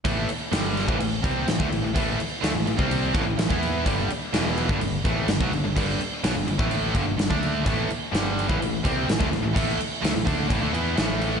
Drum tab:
CC |x-x-x-x-x-x-x-x-|x-x-x-x-x-x-x-x-|x-x-x-x-x-x-x-x-|x-x-x-x-x-x-x-x-|
SD |----o-o-----o---|----o-------o---|----o-------o---|----o-------o---|
BD |o------o--o--o--|o------o--o--o--|o------o--o--o--|o------o--o--o--|

CC |x-x-x-x-x-x-x-x-|x-x-x-x-x-x-x-x-|
SD |----o-------o-o-|----o-o-----o---|
BD |o------o--o--o--|o-----o-o-------|